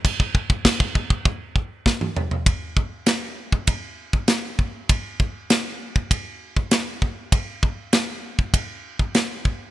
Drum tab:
CC |x---x-----------|----------------|----------------|----------------|
RD |----------------|b---b---b---b---|b---b---b---b---|b---b---b---b---|
SD |----o-------o---|----o-------o---|----o-------o---|----o-------o---|
T2 |-------------o--|----------------|----------------|----------------|
FT |--------------oo|----------------|----------------|----------------|
BD |ooooooooo-o-o---|o-o----oo--o--o-|o-o----oo--o--o-|o-o----oo--o--o-|